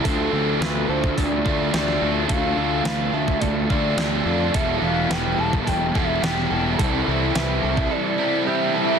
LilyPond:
<<
  \new Staff \with { instrumentName = "Soft synth lead" } { \time 4/4 \key d \dorian \tempo 4 = 107 a'4. c''8 d''4 d''8. r16 | f''4. e''8 d''4. d''8 | e''8 f''8 g''8 a''8 g''8 e''8 g''8. r16 | r4 e''4 d''4 e''4 | }
  \new Staff \with { instrumentName = "Clean electric guitar" } { \time 4/4 \key d \dorian a'4 b'8 a'8 a'4 g'8 a'8 | a'4 b'8 a'8 a'4 g'8 a'8 | a'4 b'8 a'8 a'4 g'8 a'8 | a'4 b'8 a'8 a'4 g'8 a'8 | }
  \new Staff \with { instrumentName = "Overdriven electric guitar" } { \time 4/4 \key d \dorian <d a d' f'>8 <a d' f'>8 <d a d' f'>4. <a d' f'>8 <d a d' f'>8 <a d' f'>8 | <d a d' f'>8 <a d' f'>8 <d a d' f'>4. <a d' f'>8 <d a d' f'>8 <a d' f'>8 | <e, b, e g b e'>8 <e g b e'>8 <e g b e'>4. <e g b e'>8 <e g b e'>8 <e g b e'>8 | <c e g c' e'>8 <g c' e'>8 <e g c' e'>4. <g c' e'>8 <e g c' e'>8 <g c' e'>8 | }
  \new Staff \with { instrumentName = "Overdriven electric guitar" } { \time 4/4 \key d \dorian <d a d' f'>2~ <d a d' f'>8 <d a d' f'>8 <d a d' f'>4 | <d a d' f'>2~ <d a d' f'>8 <d a d' f'>8 <d a d' f'>4 | <e, b, e g b e'>2~ <e, b, e g b e'>8 <e, b, e g b e'>8 <e, b, e g b e'>4 | <c e g c' e'>2~ <c e g c' e'>8 <c e g c' e'>8 <c e g c' e'>4 | }
  \new Staff \with { instrumentName = "Picked electric bass" } { \clef bass \time 4/4 \key d \dorian d,8 d,8 d,8 d,8 d,8 d,8 d,8 d,8 | d,8 d,8 d,8 d,8 d,8 d,8 d,8 f,8 | e,,8 e,,8 e,,8 e,,8 e,,8 e,,8 e,,8 e,,8 | c,8 c,8 c,8 c,8 r2 | }
  \new DrumStaff \with { instrumentName = "Drums" } \drummode { \time 4/4 <hho bd>4 <hho sn>8. bd16 <hho bd>8 bd8 <hho sn>16 sn8. | <hho bd>4 <hho sn>8. bd16 <hho bd>8 bd8 <hho sn>4 | <hho bd>4 <hho sn>8. bd16 <hho bd>8 <bd sn>8 <hho sn>16 sn8. | <hho bd>4 <hho sn>8. bd16 r4 r4 | }
>>